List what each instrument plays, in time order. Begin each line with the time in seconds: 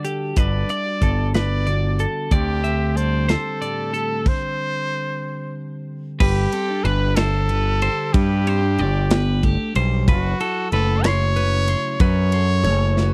Already playing: clean electric guitar D3 G3 D4 F#4
0.04 clean electric guitar G4 A4, closed hi-hat
0.36 picked electric bass G1, clean electric guitar G3 D4 F#4 A4 B4, trumpet D5, kick, closed hi-hat
0.69 clean electric guitar E4 D5, closed hi-hat
0.86 clean electric guitar F#4
1.01 picked electric bass G1, clean electric guitar B3 A4, kick, closed hi-hat
1.34 clean electric guitar D4 B4, trumpet D5, snare, closed hi-hat
1.67 clean electric guitar D3 F#4 D5, closed hi-hat
1.99 clean electric guitar A4, closed hi-hat
2.31 picked electric bass D2, clean electric guitar D3 C4 D5, trumpet G4, kick, closed hi-hat
2.64 clean electric guitar C4 E5, closed hi-hat
2.95 clean electric guitar G3 A4 D5, trumpet C5, closed hi-hat
3.28 clean electric guitar C4 C5, trumpet A4, snare, closed hi-hat
3.61 clean electric guitar A2 G4 D5, closed hi-hat
3.94 clean electric guitar G4 A4, closed hi-hat
4.26 trumpet C5, kick, crash
6.20 picked electric bass G1, clean electric guitar G3 B4, trumpet G4, kick, crash
6.52 clean electric guitar C4 A4, ride
6.70 clean electric guitar D4
6.84 picked electric bass G1, clean electric guitar D4 B4, trumpet B4, ride
7.15 clean electric guitar E4 C5, trumpet A4, snare, ride
7.35 clean electric guitar G4
7.49 clean electric guitar D3 B4, ride
7.82 clean electric guitar G4 C5, ride
8.13 picked electric bass G2, clean electric guitar G3 B4, trumpet G4, kick, ride
8.47 clean electric guitar C4 C5, ride
8.63 clean electric guitar D4
8.78 picked electric bass G1, clean electric guitar D4 D5, ride
9.10 clean electric guitar B3 B4, snare, ride
9.43 clean electric guitar A3 G4, kick, ride
9.74 picked electric bass B1, clean electric guitar G3 C5, ride
10.07 picked electric bass F#1, clean electric guitar F#3 B4, trumpet F#4, kick, ride
10.40 clean electric guitar E4 A4, ride
10.71 picked electric bass F#1, clean electric guitar A3 B4, trumpet A4, ride
11.04 clean electric guitar E4 C6, trumpet C#5, snare, ride
11.20 clean electric guitar F#4
11.36 clean electric guitar C#3 B4, ride
11.68 clean electric guitar E4 C6, ride
12.00 picked electric bass F#2, clean electric guitar F#3 B4, trumpet C#5, kick, ride
12.32 clean electric guitar A4 C6, ride
12.64 picked electric bass F#1, clean electric guitar A3 C#5, ride
12.97 clean electric guitar F#4 B4, snare